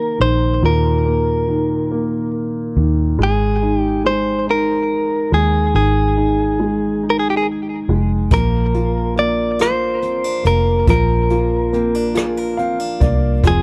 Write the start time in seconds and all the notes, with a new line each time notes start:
Already playing: D#2 D#3 A#3 A#4
0.19 A#1 D#3 C5
0.63 D#2 A#2 A#4
1.06 A#3
1.48 D#3
1.91 A#3
2.77 D#2 D#3
3.19 G#1 G#3
3.23 G#4
3.62 D#4
3.77 G4
4.04 G#3 C5
4.47 D#4 A#4
5.32 D#2 G#3 G#4
5.74 G#1 D#3 G#4
6.17 D#4
6.60 G#3
7.03 D#4
7.10 A#4
7.19 G#4
7.30 G4
7.37 G#4
7.89 F1 G#3
8.31 A#1 F3 A#3 A#4, kick, closed hi-hat
8.74 A#3 F4, closed hi-hat
9.16 A#3 D4 D5, closed hi-hat
9.59 F4 A#4 C5, cross-stick, closed hi-hat
10.02 C4, closed hi-hat
10.24 D4
10.44 F1 A#3 A#4, closed hi-hat
10.87 A#1 F3 A#4, kick, closed hi-hat
11.30 A#3 F4, closed hi-hat
11.73 A#3 C4, closed hi-hat
11.95 D4
12.15 F4 G#4, cross-stick, closed hi-hat
12.37 A#4
12.57 C4 F5, closed hi-hat
12.80 D4
13.00 C2 A#3 D5, kick, closed hi-hat
13.44 F1 F3 C4 G#4, kick, closed hi-hat